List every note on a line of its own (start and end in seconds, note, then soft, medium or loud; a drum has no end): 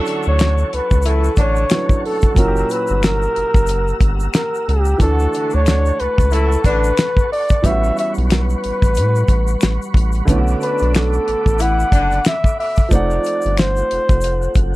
0.00 1.66 F#3 medium
0.00 1.66 C#4 medium
0.00 1.67 D4 medium
0.00 1.68 E4 medium
0.00 0.27 A4 medium
0.00 1.69 A4 medium
0.00 2.34 A4 medium
0.00 7.60 F#5 medium
0.00 2.34 A5 medium
0.00 2.34 C#6 medium
0.06 0.68 D3 medium
0.06 0.68 D4 medium
0.06 closed hi-hat medium
0.06 shaker soft
0.23 shaker soft
0.27 0.64 D2 loud
0.27 0.76 C#5 loud
0.39 finger snap medium
0.39 snare loud
0.39 closed hi-hat medium
0.39 shaker medium
0.58 shaker soft
0.73 0.81 C#2 soft
0.73 1.08 B4 medium
0.73 closed hi-hat medium
0.91 1.30 C#2 medium
0.91 kick loud
0.91 shaker soft
1.02 1.31 E3 medium
1.02 1.31 E4 medium
1.02 closed hi-hat medium
1.02 shaker medium
1.07 1.42 A4 medium
1.24 shaker soft
1.36 1.65 A1 medium
1.36 1.64 D3 medium
1.36 1.64 D4 medium
1.36 kick medium
1.36 closed hi-hat medium
1.36 shaker medium
1.40 2.05 C#5 loud
1.56 shaker medium
1.70 2.33 F#3 soft
1.70 2.37 C#4 soft
1.70 2.37 D4 soft
1.70 2.38 E4 soft
1.70 finger snap medium
1.70 snare loud
1.70 closed hi-hat medium
1.70 shaker medium
1.74 2.38 B4 medium
1.89 kick loud
1.89 shaker soft
2.06 2.39 A4 medium
2.06 open hi-hat medium
2.21 kick medium
2.21 closed hi-hat soft
2.21 shaker soft
2.34 2.64 F#1 loud
2.34 4.96 A#2 medium
2.34 4.95 F#3 medium
2.34 4.97 C#4 medium
2.34 4.98 G4 medium
2.34 2.73 A#4 loud
2.34 4.98 A#5 medium
2.34 4.98 E6 medium
2.34 kick loud
2.34 closed hi-hat medium
2.34 shaker medium
2.39 4.98 E4 medium
2.39 2.46 F#4 medium
2.48 5.02 G4 medium
2.56 shaker soft
2.70 3.05 B4 medium
2.70 closed hi-hat medium
2.70 shaker soft
2.87 3.28 G1 medium
2.87 shaker soft
3.03 4.09 A#4 loud
3.03 finger snap medium
3.03 snare loud
3.03 closed hi-hat medium
3.03 shaker medium
3.22 shaker soft
3.36 3.44 F#1 soft
3.36 closed hi-hat medium
3.54 3.93 F#1 medium
3.54 kick medium
3.54 closed hi-hat soft
3.54 shaker soft
3.67 closed hi-hat medium
3.67 shaker medium
3.88 shaker soft
4.01 4.28 G1 medium
4.01 kick medium
4.01 closed hi-hat medium
4.01 shaker soft
4.20 shaker medium
4.34 4.70 A#4 medium
4.34 finger snap medium
4.34 snare loud
4.34 closed hi-hat medium
4.34 shaker medium
4.55 shaker soft
4.68 4.95 C#2 medium
4.68 5.01 G4 medium
4.68 closed hi-hat medium
4.85 shaker soft
4.98 5.27 D2 loud
4.98 7.59 E3 medium
4.98 7.60 A3 medium
4.98 7.61 A4 medium
4.98 5.56 A4 loud
4.98 7.62 A5 medium
4.98 10.24 C#6 medium
4.98 kick loud
4.98 closed hi-hat medium
4.98 shaker medium
5.03 7.61 D4 medium
5.03 5.10 E4 medium
5.11 7.65 F#4 medium
5.19 shaker soft
5.33 5.95 D3 medium
5.33 5.95 D4 medium
5.33 closed hi-hat medium
5.33 shaker soft
5.50 5.92 D2 loud
5.50 shaker soft
5.55 6.02 C#5 loud
5.66 finger snap medium
5.66 snare loud
5.66 closed hi-hat medium
5.66 shaker medium
5.86 shaker soft
6.00 6.08 C#2 soft
6.00 6.34 B4 loud
6.00 closed hi-hat medium
6.18 6.57 C#2 medium
6.18 kick loud
6.18 closed hi-hat soft
6.18 shaker soft
6.31 6.58 E3 medium
6.31 6.58 E4 medium
6.31 6.67 A4 medium
6.31 closed hi-hat loud
6.31 shaker medium
6.52 shaker soft
6.64 6.92 A1 medium
6.64 6.92 D3 medium
6.64 6.92 D4 medium
6.64 7.31 B4 loud
6.64 kick medium
6.64 closed hi-hat medium
6.64 shaker soft
6.84 shaker medium
6.97 finger snap medium
6.97 snare loud
6.97 closed hi-hat medium
6.97 shaker medium
7.17 kick loud
7.17 shaker soft
7.32 7.67 D5 loud
7.32 open hi-hat medium
7.49 kick loud
7.49 closed hi-hat soft
7.49 shaker soft
7.62 7.91 A1 loud
7.62 10.23 E3 medium
7.62 10.24 G3 medium
7.62 10.25 G3 medium
7.62 10.24 B3 medium
7.62 7.98 E5 loud
7.62 12.88 F#5 medium
7.62 12.87 B5 medium
7.62 kick loud
7.62 closed hi-hat medium
7.62 shaker medium
7.67 10.25 C#4 medium
7.67 10.26 F#4 medium
7.84 shaker soft
7.97 8.13 E5 loud
7.97 closed hi-hat medium
7.97 shaker soft
8.14 8.55 B1 loud
8.14 closed hi-hat soft
8.14 shaker soft
8.30 9.92 B4 loud
8.30 finger snap medium
8.30 snare loud
8.30 closed hi-hat medium
8.30 shaker medium
8.50 shaker soft
8.64 8.72 A1 soft
8.64 closed hi-hat medium
8.82 8.99 A1 loud
8.82 kick medium
8.82 closed hi-hat soft
8.82 shaker soft
8.95 9.24 A2 loud
8.95 closed hi-hat medium
8.95 shaker medium
9.16 shaker soft
9.28 9.56 A1 medium
9.28 kick medium
9.28 closed hi-hat medium
9.28 shaker soft
9.47 shaker soft
9.61 9.79 A1 medium
9.61 finger snap medium
9.61 snare loud
9.61 closed hi-hat medium
9.61 shaker medium
9.82 shaker soft
9.94 10.22 A1 loud
9.94 kick loud
9.94 closed hi-hat medium
10.12 closed hi-hat soft
10.12 shaker soft
10.25 10.55 B1 loud
10.25 12.86 D3 medium
10.25 12.87 A3 medium
10.25 12.88 B3 medium
10.25 14.76 A4 medium
10.25 12.89 D6 medium
10.25 kick loud
10.25 closed hi-hat medium
10.25 shaker medium
10.30 12.88 C#4 medium
10.30 10.37 E4 medium
10.38 12.93 F#4 medium
10.48 shaker soft
10.61 11.23 D3 medium
10.61 11.23 D4 medium
10.61 10.92 B4 medium
10.61 closed hi-hat medium
10.61 shaker medium
10.78 11.19 B1 medium
10.78 shaker soft
10.83 closed hi-hat soft
10.95 11.63 A4 medium
10.95 finger snap medium
10.95 snare loud
10.95 closed hi-hat medium
10.95 shaker medium
11.13 shaker soft
11.28 11.36 A1 soft
11.28 closed hi-hat medium
11.46 11.84 A1 medium
11.46 kick medium
11.46 shaker soft
11.59 11.86 E3 medium
11.59 11.86 E4 medium
11.59 12.27 F#5 loud
11.59 closed hi-hat medium
11.59 shaker medium
11.80 shaker soft
11.92 12.20 F#1 medium
11.92 12.19 D3 medium
11.92 12.19 D4 medium
11.92 kick medium
11.92 closed hi-hat medium
11.92 shaker soft
12.11 closed hi-hat soft
12.11 shaker medium
12.25 12.57 E5 loud
12.25 finger snap medium
12.25 snare loud
12.25 closed hi-hat medium
12.25 shaker medium
12.44 kick loud
12.44 shaker soft
12.60 12.94 E5 loud
12.60 open hi-hat medium
12.76 kick loud
12.76 shaker soft
12.89 13.19 F1 loud
12.89 14.76 F3 medium
12.89 14.76 A3 medium
12.89 14.76 C4 medium
12.89 14.76 F4 medium
12.89 13.61 D5 loud
12.89 14.76 F#5 medium
12.89 kick loud
12.89 closed hi-hat medium
12.89 shaker medium
12.93 14.76 D#4 medium
12.93 14.76 F#5 medium
13.11 shaker soft
13.24 closed hi-hat medium
13.24 shaker soft
13.42 13.83 G1 medium
13.42 shaker soft
13.46 closed hi-hat soft
13.57 14.64 C5 loud
13.57 finger snap medium
13.57 snare loud
13.57 closed hi-hat medium
13.57 shaker medium
13.77 shaker soft
13.91 13.99 F1 soft
13.91 closed hi-hat medium
14.09 14.48 F1 medium
14.09 kick loud
14.09 closed hi-hat soft
14.09 shaker soft
14.21 closed hi-hat medium
14.21 shaker medium
14.42 shaker soft
14.55 14.76 F#1 loud
14.55 kick medium
14.55 closed hi-hat medium
14.55 shaker medium